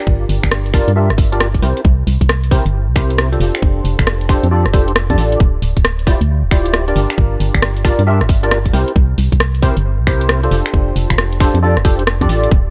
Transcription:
Already playing: D4 F4 G4 A#4 D5
0.07 G1, kick
0.29 G1, open hi-hat
0.43 G1, finger snap, kick, closed hi-hat
0.51 cross-stick
0.66 closed hi-hat
0.74 D4 F4 G4 A#4 D5, finger snap, kick, open hi-hat
0.88 G2, closed hi-hat
0.96 D4 F4 G4 A#4 E5
1.10 G1, cross-stick
1.18 kick, open hi-hat
1.32 D4 F4 G4 A#4 D5, closed hi-hat
1.40 cross-stick
1.54 kick, closed hi-hat
1.62 C2 C4 E4 G4 A#4 C5, open hi-hat
1.77 closed hi-hat
1.85 C2, kick
2.07 C2, open hi-hat
2.21 C2, kick, closed hi-hat
2.29 cross-stick
2.44 closed hi-hat
2.51 C4 E4 G4 A#4 C5, kick, open hi-hat
2.66 G1, closed hi-hat
2.88 C2
2.96 C4 E4 G4 A#4 C5, finger snap, kick, open hi-hat
3.10 closed hi-hat
3.18 cross-stick
3.32 D4 F4 G4 A4 C5, closed hi-hat
3.40 F1, open hi-hat
3.55 finger snap, closed hi-hat
3.62 F1, kick
3.85 F1, open hi-hat
3.99 F1, finger snap, kick, closed hi-hat
4.07 cross-stick
4.21 closed hi-hat
4.29 D4 F4 G4 A4 C5, finger snap, kick, open hi-hat
4.43 F2, closed hi-hat
4.51 D4 F4 G4 A4 D5
4.66 F1, cross-stick
4.73 D4 F4 G4 A4 C5, kick, open hi-hat
4.88 closed hi-hat
4.96 cross-stick
5.10 F2 D4 F4 G4 A4 D5, kick, closed hi-hat
5.18 A1, open hi-hat
5.32 closed hi-hat
5.40 D1, kick
5.62 D1, open hi-hat
5.77 D1, kick, closed hi-hat
5.85 cross-stick
5.99 closed hi-hat
6.07 E4 F4 G4 C5 D5, kick, open hi-hat
6.21 D2, closed hi-hat
6.43 D1
6.51 E4 F4 G4 C5 D5, finger snap, kick, open hi-hat
6.66 closed hi-hat
6.74 cross-stick
6.88 D4 F4 G4 A#4 D5, closed hi-hat
6.96 G1, open hi-hat
7.10 finger snap, closed hi-hat
7.18 G1, kick
7.40 G1, open hi-hat
7.54 G1, finger snap, kick, closed hi-hat
7.62 cross-stick
7.77 closed hi-hat
7.84 D4 F4 G4 A#4 D5, finger snap, kick, open hi-hat
7.99 G2, closed hi-hat
8.07 D4 F4 G4 A#4 E5
8.21 G1, cross-stick
8.29 kick, open hi-hat
8.43 D4 F4 G4 A#4 D5, closed hi-hat
8.51 cross-stick
8.66 kick, closed hi-hat
8.73 C2 C4 E4 G4 A#4 C5, open hi-hat
8.88 closed hi-hat
8.96 C2, kick
9.18 C2, open hi-hat
9.32 C2, kick, closed hi-hat
9.40 cross-stick
9.55 closed hi-hat
9.62 C4 E4 G4 A#4 C5, kick, open hi-hat
9.77 G1, closed hi-hat
9.99 C2
10.07 C4 E4 G4 A#4 C5, finger snap, kick, open hi-hat
10.21 closed hi-hat
10.29 cross-stick
10.43 D4 F4 G4 A4 C5, closed hi-hat
10.51 F1, open hi-hat
10.66 finger snap, closed hi-hat
10.74 F1, kick
10.96 F1, open hi-hat
11.10 F1, finger snap, kick, closed hi-hat
11.18 cross-stick
11.33 closed hi-hat
11.40 D4 F4 G4 A4 C5, finger snap, kick, open hi-hat
11.54 F2, closed hi-hat
11.63 D4 F4 G4 A4 D5
11.77 F1, cross-stick
11.85 D4 F4 G4 A4 C5, kick, open hi-hat
11.99 closed hi-hat
12.07 cross-stick
12.21 F2 D4 F4 G4 A4 D5, kick, closed hi-hat
12.29 A1, open hi-hat
12.43 closed hi-hat
12.51 D1, kick

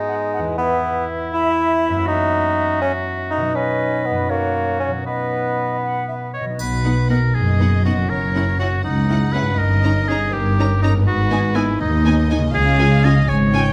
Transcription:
Already playing: G#2 G#3 B3 D#4 F#4 B4
0.08 F#5
0.34 F#5
0.39 E2
0.43 B3
0.48 E4
0.52 G#4
0.57 B3 E4 E5
1.33 E4
1.89 F#2
1.94 A#3
1.98 E4
2.03 F#4
2.08 D#4
2.82 C#4
3.31 D#4
3.37 B2
3.41 F#3
3.46 D#4
3.50 F#4
3.55 C#4 B4 D#5
4.06 B3
4.11 F#2
4.16 F#3
4.20 C#4
4.25 F#4
4.29 A#3 F#4 C#5
4.80 C#4
4.88 B2
4.92 F#3
4.97 D#4
5.01 F#4
5.06 B3 B4 D#5
5.83 F#5
6.08 E5
6.33 C#5 D#5
6.41 B2
6.45 F#3
6.50 D#4
6.55 F#4
6.59 B1 B2 B4, triangle
6.84 B3 D#4 F#5
7.10 B3 D#4 A#4 F#5
7.35 F#1 F#2 G#4 D#5
7.60 B3 D#4 F#5
7.85 B3 D#4 F#4 F#5
7.92 F#2
7.96 F#3
8.01 C#4
8.05 E4
8.10 F#1 F#2 A#4 C#5
8.35 C#4 E4 F#5
8.59 C#4 E4 F#4 F#5
8.84 C#2 D#4 F#5
9.10 C#4 E4 F#5
9.33 C#4 E4 B4 F#5
9.42 G2
9.46 A#3
9.50 C#4
9.55 G1 D#4 A#4 D#5
9.60 G2
9.84 C#4 D#4 A#5
10.08 C#4 D#4 G#4 A#5
10.33 G1 G2 G4 A#4
10.59 C#4 D#4 A#5
10.82 C#4 D#4 A#5
10.89 G#2
10.93 G#3
10.98 B3
11.02 D#4 B4
11.07 G#1 G#2 F#4
11.31 B3 D#4 G#5
11.55 B3 D#4 E4 G#5
11.80 D#2 D#4 D#5
12.05 B3 D#4 G#5
12.29 B3 D#4 G#5
12.37 C#3
12.42 G#3
12.46 C#4
12.51 C#2 F4 F5
12.55 C#3 G#4
12.79 C#4 F4 G#5
13.04 C#4 F4 D#5 G#5
13.28 G#1 G#2 C#5 G#5
13.53 C#4 F4 G5 G#5

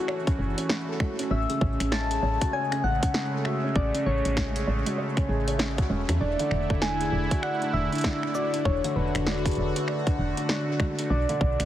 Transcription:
Already playing: C#3 E3 A3 C#4 F#4 G#4 A4 C#5
0.08 C#5, finger snap
0.27 C#4, kick, closed hi-hat
0.39 F#1 C#4
0.58 C#4, closed hi-hat
0.69 C#4, snare
0.88 A4
1.00 F#4, finger snap, kick, low conga
1.19 C#4, closed hi-hat
1.31 A1 C#3 G#3 C#4 E5
1.50 C#3, closed hi-hat
1.61 A1 C#4, kick
1.80 A1 C#3, finger snap, closed hi-hat
1.92 C#4 A5, snare
2.11 G#4, closed hi-hat
2.23 A1 C#5
2.41 F#4, kick, closed hi-hat
2.53 C#5 G#5
2.72 C#4, finger snap, closed hi-hat
2.84 A1 C#4 F#5
3.03 C#4, kick, closed hi-hat
3.14 C#4, snare
3.33 A4
3.45 F#4 E5, finger snap
3.64 C#4
3.76 A1 C#4 D5, kick
3.95 C#3, closed hi-hat
4.06 A1 C#4 C#5
4.25 A1 C#3, closed hi-hat
4.37 C#4, finger snap, kick, snare
4.56 G#4, closed hi-hat
4.67 A1 C#5
4.86 F#4, closed hi-hat, low conga
4.98 C#5
5.17 C#4, finger snap, kick, closed hi-hat
5.29 A1 G#4
5.48 C#5, closed hi-hat
5.59 C#4, snare
5.78 C#2 F#4, kick, closed hi-hat
5.90 E1 C#4, low conga
6.09 E2 C#4, finger snap, closed hi-hat
6.20 E1 D3 D4 E4 D5
6.39 D3, closed hi-hat
6.51 E1, finger snap
6.70 E1 D3, kick
6.82 D4 G#5, snare
7.01 G#4, closed hi-hat
7.12 E1 D5
7.31 F#4, kick, closed hi-hat
7.43 D5 F#5, finger snap
7.62 D4, closed hi-hat
7.74 E1 D4 E5
7.92 D4, closed hi-hat
7.95 closed hi-hat
7.98 closed hi-hat
8.01 D4, kick, snare, closed hi-hat
8.23 D4, finger snap
8.35 F#4 D5, cabasa
8.54 D4, closed hi-hat
8.65 E1 D4 F#4 C#5, kick
8.84 D3, closed hi-hat
8.91 C#5
8.96 E1 D4 B4
9.15 E1 D3, finger snap, closed hi-hat
9.27 D4, snare
9.46 G#4, kick, closed hi-hat
9.48 closed hi-hat
9.51 closed hi-hat
9.53 closed hi-hat
9.55 E1 D5, closed hi-hat
9.76 F#4, closed hi-hat
9.88 D5, finger snap
10.07 D4, kick, closed hi-hat
10.18 E1 D4
10.37 D4, closed hi-hat
10.49 D4, snare
10.68 D4
10.80 F#4, finger snap, kick, low conga
10.99 D4, closed hi-hat
11.10 B1 B2 A3 D4 D5
11.29 D3, closed hi-hat
11.41 B1 D4, kick
11.60 B1 D3, finger snap, closed hi-hat

